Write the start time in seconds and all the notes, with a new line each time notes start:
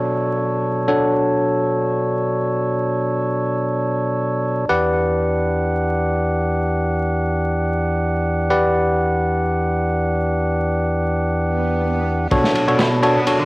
Already playing: B2 F#3 D4 F#4 A4 C#5, downlifter
0.88 D4 F#4 A4 C#5
4.69 E2 E3 G4 B4 D5 F#5
8.50 G4 B4 D5 F#5
11.36 swell
12.31 B2 F#3 D4 F#4 A4 C#5, kick, ride, riser
12.44 snare
12.55 ride
12.68 B2 D4 F#4 A4 C#5, ride
12.79 snare, clap, ride
13.03 D4 F#4 A4 C#5, ride
13.16 B3
13.27 D4 F#4 A4 C#5, ride
13.39 D3